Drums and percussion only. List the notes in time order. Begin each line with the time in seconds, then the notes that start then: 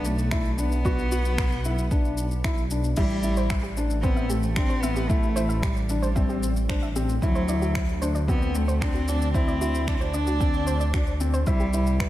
0.05 shaker
0.19 shaker
0.31 finger snap, kick, shaker
0.45 shaker
0.58 shaker
0.72 shaker
0.85 kick, shaker
0.99 shaker
1.12 shaker
1.25 shaker
1.38 finger snap, kick, shaker
1.52 shaker
1.65 shaker
1.78 shaker
1.91 kick, shaker
2.05 shaker
2.18 shaker
2.31 shaker
2.44 finger snap, kick, shaker
2.57 shaker
2.71 shaker
2.84 shaker
2.97 kick, crash, shaker
3.10 shaker
3.23 shaker
3.37 shaker
3.50 finger snap, kick, shaker
3.64 shaker
3.77 shaker
3.90 shaker
4.03 kick, shaker
4.17 shaker
4.30 shaker
4.43 shaker
4.56 finger snap, kick, shaker
4.70 shaker
4.83 shaker
4.96 shaker
5.10 kick, shaker
5.23 shaker
5.37 shaker
5.50 shaker
5.63 finger snap, kick, shaker
5.77 shaker
5.89 shaker
6.03 shaker
6.16 kick, shaker
6.29 shaker
6.43 shaker
6.56 shaker
6.69 finger snap, kick, shaker
6.82 shaker
6.96 shaker
7.09 shaker
7.22 kick, shaker
7.35 shaker
7.48 shaker
7.62 shaker
7.75 finger snap, kick, shaker
7.89 shaker
8.02 shaker
8.15 shaker
8.28 kick, shaker
8.42 shaker
8.55 shaker
8.69 shaker
8.81 finger snap, kick, shaker
8.95 shaker
9.08 shaker
9.22 shaker
9.34 kick, shaker
9.48 shaker
9.61 shaker
9.75 shaker
9.87 finger snap, kick, shaker
10.01 shaker
10.14 shaker
10.27 shaker
10.41 kick, shaker
10.54 shaker
10.67 shaker
10.81 shaker
10.94 finger snap, kick, shaker
11.07 shaker
11.20 shaker
11.34 shaker
11.47 kick, shaker
11.60 shaker
11.73 shaker
11.87 shaker
12.00 finger snap, kick, shaker